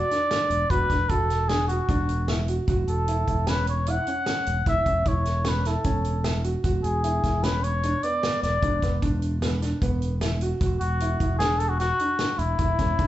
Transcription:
Already playing: muted trumpet D5
0.11 grand piano D4, snare, closed hi-hat
0.31 grand piano D4, snare, closed hi-hat
0.50 fingered electric bass E1, closed hi-hat
0.70 fingered electric bass E1, grand piano F#4, muted trumpet B4, kick, closed hi-hat
0.90 fingered electric bass E1, grand piano D4, kick, snare, closed hi-hat
1.09 fingered electric bass E1, grand piano F#4, muted trumpet A4, kick, closed hi-hat
1.30 snare, closed hi-hat
1.48 grand piano D4, muted trumpet G#4, snare, closed hi-hat
1.69 muted trumpet F#4, grand piano F#4, closed hi-hat
1.89 fingered electric bass E1, grand piano D4, kick, closed hi-hat
2.09 closed hi-hat
2.28 grand piano E4, snare, closed hi-hat
2.48 grand piano F#4, closed hi-hat
2.68 fingered electric bass E1, grand piano F#4, kick, closed hi-hat
2.88 fingered electric bass E1, muted trumpet A4, closed hi-hat
3.08 grand piano E4, closed hi-hat
3.28 fingered electric bass E1, grand piano E4, kick, closed hi-hat
3.47 grand piano C#4, muted trumpet B4, snare, closed hi-hat
3.67 muted trumpet C#5, closed hi-hat
3.87 grand piano E4, muted trumpet F#5, closed hi-hat
4.07 grand piano C#4, closed hi-hat
4.26 grand piano C#4, snare, closed hi-hat
4.46 fingered electric bass E1, closed hi-hat
4.66 fingered electric bass E1, grand piano E4, muted trumpet E5, kick, closed hi-hat
4.86 fingered electric bass E1, grand piano C#4, kick, closed hi-hat
5.05 fingered electric bass E1, grand piano E4, muted trumpet C#5, kick, closed hi-hat
5.25 snare, closed hi-hat
5.45 grand piano C#4, muted trumpet B4, snare, closed hi-hat
5.65 grand piano E4, muted trumpet A4, snare, closed hi-hat
5.84 fingered electric bass E1, grand piano C#4, kick, closed hi-hat
6.04 closed hi-hat
6.24 grand piano E4, snare, closed hi-hat
6.44 grand piano F#4, closed hi-hat
6.64 fingered electric bass E1, grand piano F#4, kick, closed hi-hat
6.83 fingered electric bass E1, muted trumpet G#4, closed hi-hat
7.04 grand piano E4, closed hi-hat
7.24 fingered electric bass E1, grand piano E4, kick, snare, closed hi-hat
7.43 grand piano C#4, muted trumpet B4, snare, closed hi-hat
7.64 muted trumpet C#5, closed hi-hat
7.83 grand piano D4, closed hi-hat
8.03 grand piano B3, muted trumpet D5, closed hi-hat
8.23 grand piano B3, snare, closed hi-hat
8.43 fingered electric bass E1, muted trumpet D5, snare, closed hi-hat
8.62 fingered electric bass E1, grand piano D4, kick, closed hi-hat
8.82 fingered electric bass E1, grand piano B3, kick, snare, closed hi-hat
9.02 fingered electric bass E1, grand piano D4, kick, closed hi-hat
9.22 closed hi-hat
9.42 grand piano B3, snare, closed hi-hat
9.62 grand piano D4, snare, closed hi-hat
9.82 fingered electric bass E1, grand piano B3, kick, closed hi-hat
10.02 closed hi-hat
10.21 grand piano E4, snare, closed hi-hat
10.41 grand piano F#4, closed hi-hat
10.61 fingered electric bass E1, grand piano F#4, kick, closed hi-hat
10.80 fingered electric bass E1, muted trumpet F#4, closed hi-hat
11.00 grand piano E4, closed hi-hat
11.20 fingered electric bass E1, grand piano E4, kick, closed hi-hat
11.38 grand piano D4, muted trumpet G#4, snare, closed hi-hat
11.59 muted trumpet A4, closed hi-hat
11.69 muted trumpet F#4
11.80 muted trumpet F#4, grand piano F#4, snare, closed hi-hat
11.99 grand piano D4, closed hi-hat
12.19 grand piano D4, snare, closed hi-hat
12.39 fingered electric bass E1, muted trumpet E4, closed hi-hat
12.58 fingered electric bass E1, grand piano E4, kick, closed hi-hat
12.79 fingered electric bass E1, grand piano C#4, kick, snare, closed hi-hat
12.99 fingered electric bass E1, grand piano D4, kick, closed hi-hat

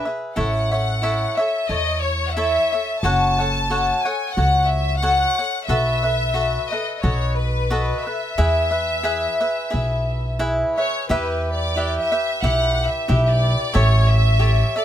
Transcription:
0.05 cavaquinho G#4 B4 E5
0.36 upright bass A1, cavaquinho E4 A4 C#5 E5, violin section F#5
0.71 cavaquinho A4 C#5 E5
1.02 cavaquinho E4 A4 C#5 E5
1.37 cavaquinho A4 C#5 E5, violin section E5
1.67 upright bass E2, cavaquinho E4 A4 C#5, violin section D#5
2.01 violin section C#5
2.29 violin section E5 F#5
2.37 cavaquinho E4 A4 C#5 E5
2.72 cavaquinho A4 C#5 E5
3.01 upright bass F#1, cavaquinho F#4 A4 C#5, violin section A5
3.05 cavaquinho F#5
3.39 cavaquinho A4 C#5 F#5
3.70 cavaquinho F#4 A4 C#5 F#5
4.01 cavaquinho F#5, violin section G#5
4.05 cavaquinho A4 C#5
4.32 violin section F#5
4.37 upright bass C#2, cavaquinho F#4 A4 C#5 F#5
4.67 violin section E5
4.98 violin section F#5
5.02 cavaquinho F#4 A4 C#5 F#5
5.38 cavaquinho A4 C#5 F#5
5.65 upright bass B1, cavaquinho F#4 A4 B4, violin section E5
5.70 cavaquinho E5
6.03 cavaquinho A4 B4 E5
6.34 cavaquinho F#4 A4 B4 E5
6.68 violin section D#5, cavaquinho E5
6.72 cavaquinho A4 B4
6.96 violin section D#5
7.01 upright bass B1, cavaquinho F#4 A4 B4 D#5, violin section C#5
7.36 violin section B4
7.70 cavaquinho F#4 A4 B4 D#5
8.02 violin section E5
8.07 cavaquinho A4 B4
8.38 upright bass E2, cavaquinho E4 G#4 B4 E5
8.71 cavaquinho G#4 B4 E5
9.03 cavaquinho E4 G#4 B4 E5
9.41 cavaquinho G#4 B4 E5
9.70 upright bass B1, cavaquinho E4 G#4 B4 E5
10.39 cavaquinho E4 G#4 B4 E5
10.77 cavaquinho G#4 B4 E5, violin section C#5
11.09 upright bass E2, cavaquinho E4 G4 B4 E5, violin section B4
11.53 violin section D5
11.76 cavaquinho E4 G4 B4 E5
11.99 violin section E5
12.12 cavaquinho G4 B4 E5
12.43 upright bass B1, cavaquinho E4 G4 B4 E5, violin section F#5
12.87 violin section E5
13.08 upright bass B1, cavaquinho E4 G4 B4 E5
13.25 violin section E5
13.30 violin section D5
13.74 upright bass A1, cavaquinho G4 A4 C#5 E5, violin section C#5
14.11 violin section E5
14.39 cavaquinho G4 A4 C#5 E5
14.76 cavaquinho A4 E5, violin section D5

